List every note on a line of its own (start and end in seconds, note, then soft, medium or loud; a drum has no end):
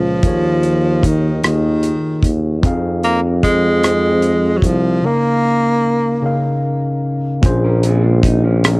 0.00 0.19 C#2 medium
0.00 0.25 A#2 medium
0.00 1.07 F3 medium
0.00 0.24 A#3 soft
0.00 0.25 C#4 soft
0.00 0.25 G#4 soft
0.00 0.25 C5 medium
0.23 1.40 D#2 medium
0.23 0.99 D#3 medium
0.23 1.00 A#3 medium
0.23 1.01 F4 medium
0.23 1.01 G#4 medium
0.23 kick loud
0.23 closed hi-hat medium
0.27 1.02 C#5 medium
0.63 closed hi-hat soft
1.03 1.44 D#3 medium
1.03 kick medium
1.03 closed hi-hat medium
1.43 1.93 D#2 medium
1.43 2.19 D#3 medium
1.43 2.31 D#3 medium
1.43 2.20 A#3 soft
1.43 2.21 F4 soft
1.43 1.51 G4 soft
1.43 cross-stick medium
1.43 closed hi-hat medium
1.47 2.22 D#5 medium
1.53 2.24 G#4 medium
1.83 closed hi-hat soft
2.23 2.66 D#2 medium
2.23 kick medium
2.23 closed hi-hat medium
2.62 4.60 F2 medium
2.62 3.39 F3 medium
2.62 3.39 C4 medium
2.62 3.40 D#4 medium
2.62 3.41 G#4 medium
2.62 kick loud
2.62 closed hi-hat medium
2.67 3.41 F5 medium
3.03 3.20 A#3 medium
3.03 closed hi-hat soft
3.43 4.59 G#3 loud
3.43 kick medium
3.43 closed hi-hat medium
3.81 4.59 F3 medium
3.81 4.59 C4 soft
3.81 4.60 D#4 soft
3.81 3.91 F#4 soft
3.81 cross-stick medium
3.81 closed hi-hat medium
3.86 4.61 C5 medium
3.91 4.64 G#4 soft
4.22 closed hi-hat soft
4.57 4.67 F#3 medium
4.62 4.99 C2 medium
4.62 5.07 F3 medium
4.62 kick medium
4.62 closed hi-hat soft
5.02 5.79 C#3 medium
5.02 6.64 A#3 medium
5.02 5.80 C#4 medium
5.02 5.80 D#4 medium
5.02 5.81 A#4 medium
5.07 5.81 F5 medium
6.22 6.99 C#3 medium
6.22 6.99 C#4 medium
6.22 7.00 D#4 medium
6.22 7.01 A#4 medium
6.26 7.01 F5 medium
7.42 8.80 A#1 loud
7.42 8.19 A#2 medium
7.42 8.19 A#3 medium
7.42 8.20 C#4 medium
7.42 8.20 G#4 medium
7.42 kick loud
7.42 closed hi-hat medium
7.46 8.21 C5 loud
7.64 7.83 C#4 medium
7.64 7.83 A#4 medium
7.83 8.03 C4 medium
7.83 8.03 G#4 medium
7.83 closed hi-hat soft
8.03 8.23 G#3 medium
8.03 8.22 F4 medium
8.23 8.42 D#4 medium
8.23 kick medium
8.23 closed hi-hat medium
8.44 8.80 F3 medium
8.44 8.80 C#4 medium
8.62 8.80 A#2 medium
8.62 8.80 A#3 medium
8.62 8.70 C4 medium
8.62 8.80 G#4 medium
8.62 cross-stick loud
8.62 closed hi-hat medium
8.67 8.80 A#4 medium
8.72 8.80 C#4 medium